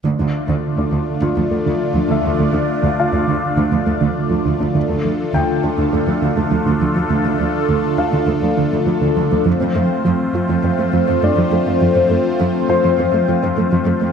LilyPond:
<<
  \new Staff \with { instrumentName = "Grand piano" } { \time 4/4 \key d \minor \tempo 4 = 102 r2 f'4. e''8~ | e''4 <f' f''>2. | r4 g''2. | r4. f''2~ f''8~ |
f''8 r2 r8 <d' d''>4~ | <d' d''>4. c''2~ c''8 | }
  \new Staff \with { instrumentName = "Analog synth pad" } { \time 4/4 \key d \minor <a d' f' d''>1~ | <a d' f' d''>1 | <a d' f' a'>1~ | <a d' f' a'>1 |
<a c' f' c''>1~ | <a c' f' c''>1 | }
  \new Staff \with { instrumentName = "Synth arpeggio sound" } { \clef bass \time 4/4 \key d \minor d16 d'16 r16 d16 r16 d'16 d16 r16 d16 f16 a16 d16 r16 f16 d16 d'16 | d16 d'16 r16 d16 r16 d'16 d16 r16 d16 f16 a16 d16 r16 f16 d16 d'16 | d16 a16 f16 r16 d16 r16 d'16 d16 a16 f16 d16 a16 f16 d16 f16 f16 | d16 a16 f16 r16 d16 r16 d'16 d16 a16 f16 d16 a16 f16 d16 f16 f16 |
f16 c'16 a16 r16 f16 r16 f'16 f16 c'16 a16 f16 c'16 a16 f16 a16 a16 | f16 c'16 a16 r16 f16 r16 f'16 f16 c'16 a16 f16 c'16 a16 f16 a16 a16 | }
  \new Staff \with { instrumentName = "Cello section" } { \clef bass \time 4/4 \key d \minor d,16 d,16 r16 d,16 r16 d,16 d,16 r16 d,16 d,16 d,16 d,16 r16 d,16 d,16 d,16 | d,16 d,16 r16 d,16 r16 d,16 d,16 r16 d,16 d,16 d,16 d,16 r16 d,16 d,16 d,16 | d,16 d,16 d,16 r16 d,16 r16 d,16 d,16 d,16 d,16 d,16 d,16 d,16 d,16 d,16 d,16 | d,16 d,16 d,16 r16 d,16 r16 d,16 d,16 d,16 d,16 d,16 d,16 d,16 d,16 d,16 d,16 |
f,16 f,16 f,16 r16 f,16 r16 f,16 f,16 f,16 f,16 f,16 f,16 f,16 f,16 f,16 f,16 | f,16 f,16 f,16 r16 f,16 r16 f,16 f,16 f,16 f,16 f,16 f,16 f,16 f,16 f,16 f,16 | }
>>